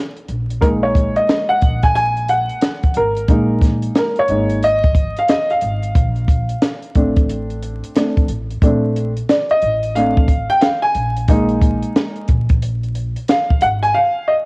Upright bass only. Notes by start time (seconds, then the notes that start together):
0.29 A#1
1.62 A#1
2.96 G#1
3.29 A#1
4.29 G#1
5.62 G#1
5.95 A#1
6.96 A1
8.28 A1
8.62 A#1
9.62 A1
10.95 A#1
12.29 A#1
13.63 G#1